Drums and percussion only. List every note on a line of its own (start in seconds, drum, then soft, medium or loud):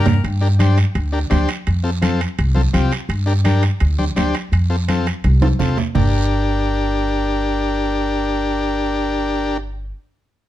0.06 low conga medium
0.06 low timbale medium
0.06 short guiro medium
0.24 high timbale medium
0.24 long guiro medium
0.60 high conga medium
0.60 high timbale medium
0.60 short guiro medium
0.78 high timbale medium
0.78 short guiro medium
0.95 high timbale medium
0.95 long guiro medium
1.31 high conga medium
1.31 high timbale medium
1.31 low timbale medium
1.31 short guiro medium
1.49 high timbale medium
1.49 short guiro medium
1.67 high timbale medium
1.67 long guiro medium
2.02 high conga medium
2.02 high timbale medium
2.02 short guiro medium
2.21 high timbale medium
2.21 short guiro medium
2.39 high timbale medium
2.39 long guiro medium
2.56 high conga medium
2.74 high conga medium
2.74 high timbale medium
2.74 short guiro medium
2.92 high timbale medium
2.92 short guiro medium
3.09 high timbale medium
3.09 long guiro medium
3.45 high conga medium
3.45 high timbale medium
3.45 short guiro medium
3.63 high timbale medium
3.63 short guiro medium
3.80 high timbale medium
3.80 long guiro medium
3.99 high conga medium
4.16 high conga medium
4.16 high timbale medium
4.16 low timbale medium
4.16 short guiro medium
4.34 high timbale medium
4.34 short guiro medium
4.53 high timbale medium
4.53 long guiro medium
4.89 high conga medium
4.89 high timbale medium
4.89 short guiro medium
5.07 high timbale medium
5.07 short guiro medium
5.24 high conga medium
5.24 high timbale medium
5.24 long guiro medium
5.42 high conga medium
5.42 high timbale medium
5.60 low conga medium
5.60 short guiro medium
5.77 low conga medium
5.77 low timbale medium
5.77 short guiro medium
5.95 low conga medium
5.95 low timbale medium
5.95 long guiro medium